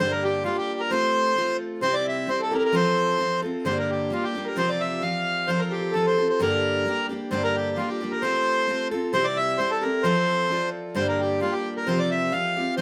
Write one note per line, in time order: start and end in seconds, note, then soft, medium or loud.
0.00 0.45 G2 medium
0.00 0.45 D3 medium
0.00 0.43 G3 medium
0.00 0.44 A#3 medium
0.00 0.45 D4 medium
0.00 0.24 G4 medium
0.00 0.46 G4 medium
0.00 0.11 A#4 medium
0.00 0.12 C5 loud
0.00 0.90 C5 medium
0.11 0.24 A#4 medium
0.11 2.24 A#4 medium
0.24 0.44 G4 medium
0.24 0.58 G4 medium
0.44 0.90 G3 medium
0.44 0.91 A#3 medium
0.44 0.91 D4 medium
0.44 0.57 F4 medium
0.44 2.10 F4 medium
0.44 0.92 G4 medium
0.58 0.81 G4 medium
0.58 2.93 G4 medium
0.80 0.91 A#4 medium
0.90 1.34 A3 medium
0.90 1.36 C4 medium
0.90 1.37 F4 medium
0.90 1.37 A4 medium
0.90 1.81 C5 medium
0.90 1.57 C5 loud
1.36 1.82 A3 medium
1.36 1.81 C4 soft
1.36 1.83 F4 medium
1.36 1.83 A4 medium
1.81 2.28 C3 medium
1.81 2.26 G3 medium
1.81 2.27 C4 medium
1.81 2.28 E4 medium
1.81 2.29 G4 medium
1.81 2.25 C5 medium
1.81 1.95 C5 loud
1.93 3.77 D5 medium
1.93 2.07 D5 loud
2.04 3.77 E5 medium
2.09 2.30 E5 medium
2.26 2.52 G3 medium
2.26 2.53 C4 medium
2.26 2.52 E4 medium
2.26 2.72 C5 medium
2.26 2.41 C5 medium
2.30 2.50 G4 medium
2.39 2.56 A4 medium
2.39 2.54 A4 medium
2.50 2.72 C4 soft
2.50 2.74 E4 soft
2.50 2.73 G4 medium
2.50 2.61 A#4 medium
2.50 2.57 A#4 medium
2.58 2.63 A#4 medium
2.58 3.77 A#4 medium
2.65 2.75 A#4 medium
2.72 3.17 F3 medium
2.72 3.18 C4 medium
2.72 3.19 F4 medium
2.72 3.20 A4 loud
2.72 3.64 C5 medium
2.72 3.41 C5 loud
3.18 3.43 F3 medium
3.18 3.44 C4 medium
3.18 3.43 F4 medium
3.18 3.41 A4 medium
3.42 3.66 C4 soft
3.42 3.66 F4 soft
3.42 3.65 A4 soft
3.65 4.11 G2 medium
3.65 4.11 D3 medium
3.65 4.09 G3 medium
3.65 4.10 A#3 medium
3.65 4.11 D4 medium
3.65 4.12 G4 medium
3.65 4.55 C5 medium
3.65 3.78 C5 medium
3.77 4.44 A#4 medium
3.77 3.91 A#4 medium
3.90 4.23 G4 medium
3.90 4.12 G4 medium
4.10 4.35 G3 medium
4.10 4.36 A#3 medium
4.10 4.35 D4 medium
4.10 4.87 F4 medium
4.10 4.24 F4 medium
4.10 4.34 G4 medium
4.24 4.47 G4 medium
4.24 5.70 G4 medium
4.35 4.56 G3 soft
4.35 4.57 A#3 soft
4.35 4.57 D4 soft
4.35 4.57 G4 soft
4.44 5.58 A#4 medium
4.44 4.56 A#4 medium
4.55 5.02 C3 medium
4.55 5.00 F3 medium
4.55 5.02 C4 medium
4.55 5.03 F4 medium
4.55 5.03 G4 medium
4.55 5.46 C5 medium
4.55 4.70 C5 loud
4.69 6.53 D5 medium
4.69 4.82 D5 medium
4.80 5.03 E5 medium
4.80 5.07 E5 medium
5.01 5.46 F3 medium
5.01 5.48 C4 medium
5.01 5.48 F4 medium
5.01 5.49 G4 medium
5.01 6.68 F5 medium
5.01 5.50 F5 medium
5.47 5.93 F3 medium
5.47 5.94 C4 medium
5.47 5.95 F4 medium
5.47 5.95 A4 medium
5.47 6.04 C5 medium
5.47 5.60 C5 medium
5.58 5.97 A#4 medium
5.58 5.72 A#4 medium
5.71 5.76 G4 medium
5.71 5.94 G4 medium
5.76 5.80 G4 medium
5.80 7.89 G4 medium
5.91 6.18 F3 medium
5.91 6.46 A4 medium
5.91 6.06 A4 medium
5.95 6.19 C4 medium
5.95 6.19 F4 medium
5.95 6.17 A4 medium
6.04 6.27 C5 medium
6.04 6.28 C5 medium
6.18 6.41 C4 soft
6.18 6.40 F4 soft
6.18 6.40 A4 soft
6.27 7.31 C5 medium
6.27 6.40 C5 medium
6.40 6.85 G2 medium
6.40 6.86 D3 medium
6.40 6.84 G3 medium
6.40 6.85 A#3 medium
6.40 6.86 D4 medium
6.40 6.87 G4 medium
6.40 7.43 A#4 medium
6.40 7.07 A#4 medium
6.85 7.10 G3 medium
6.85 7.10 A#3 soft
6.85 7.09 D4 medium
6.85 7.08 G4 medium
7.09 7.31 G3 soft
7.09 7.31 A#3 soft
7.09 7.32 D4 medium
7.09 7.31 G4 medium
7.31 7.77 G2 medium
7.31 7.77 D3 medium
7.31 7.75 G3 medium
7.31 7.76 A#3 medium
7.31 7.77 D4 medium
7.31 7.78 G4 medium
7.31 7.42 C5 medium
7.31 8.21 C5 medium
7.43 8.11 A#4 medium
7.43 7.56 A#4 loud
7.56 7.78 G4 medium
7.76 8.01 G3 medium
7.76 8.01 A#3 medium
7.76 8.01 D4 medium
7.76 7.89 F4 medium
7.76 9.43 F4 medium
7.76 8.00 G4 medium
7.88 8.12 G4 medium
7.88 10.25 G4 medium
8.01 8.22 G3 soft
8.01 8.22 A#3 soft
8.01 8.23 D4 soft
8.01 8.22 G4 soft
8.11 8.23 A#4 medium
8.11 9.78 A#4 medium
8.21 8.66 A3 medium
8.21 8.68 C4 medium
8.21 8.68 F4 medium
8.21 8.69 A4 medium
8.21 9.13 C5 medium
8.21 8.88 C5 loud
8.67 8.92 A3 medium
8.67 8.92 C4 medium
8.67 8.92 F4 medium
8.67 8.90 A4 medium
8.91 9.12 C4 soft
8.91 9.14 F4 medium
8.91 9.13 A4 medium
9.13 9.59 C3 medium
9.13 9.57 G3 medium
9.13 9.59 C4 medium
9.13 9.59 E4 medium
9.13 9.60 G4 loud
9.13 9.58 C5 medium
9.13 9.26 C5 loud
9.24 9.37 D5 loud
9.24 10.50 D5 medium
9.37 11.09 E5 loud
9.37 9.59 E5 loud
9.58 9.83 G3 soft
9.58 9.84 C4 medium
9.58 9.82 E4 medium
9.58 9.80 G4 medium
9.58 9.71 C5 medium
9.58 10.05 C5 medium
9.71 9.84 A4 medium
9.71 9.89 A4 medium
9.81 10.03 C4 soft
9.81 10.05 E4 soft
9.81 10.04 G4 soft
9.81 10.05 A#4 medium
9.81 11.10 A#4 medium
10.03 10.48 F3 medium
10.03 10.49 C4 medium
10.03 10.50 F4 medium
10.03 10.51 A4 medium
10.03 10.70 C5 medium
10.03 10.96 C5 medium
10.49 10.95 F3 soft
10.49 10.96 C4 medium
10.49 10.96 F4 medium
10.49 10.96 A4 medium
10.49 12.00 D5 medium
10.95 11.41 G2 medium
10.95 11.41 D3 medium
10.95 11.39 G3 medium
10.95 11.40 A#3 medium
10.95 11.41 D4 medium
10.95 11.42 G4 medium
10.95 11.07 C5 medium
10.95 11.88 C5 medium
11.08 11.21 A#4 medium
11.08 11.76 A#4 medium
11.20 11.40 G4 medium
11.20 11.54 G4 medium
11.40 11.87 G3 medium
11.40 11.87 A#3 medium
11.40 11.88 D4 medium
11.40 11.54 F4 medium
11.40 12.18 F4 medium
11.40 11.88 G4 medium
11.52 11.74 G4 medium
11.52 12.81 G4 medium
11.77 12.81 A#4 medium
11.77 11.88 A#4 medium
11.87 12.33 C3 medium
11.87 12.31 F3 medium
11.87 12.32 C4 medium
11.87 12.33 F4 medium
11.87 12.34 G4 medium
11.87 11.99 C5 loud
11.87 12.79 C5 medium
11.99 12.10 D5 medium
11.99 12.81 D5 medium
12.11 12.33 E5 medium
12.11 12.40 E5 medium
12.32 12.57 F3 medium
12.32 12.57 C4 medium
12.32 12.57 F4 medium
12.32 12.56 G4 medium
12.32 12.75 F5 medium
12.32 12.81 F5 medium
12.57 12.77 C4 soft
12.57 12.78 F4 soft
12.57 12.78 G4 soft
12.77 12.81 F3 medium
12.77 12.81 C4 medium
12.77 12.81 C5 loud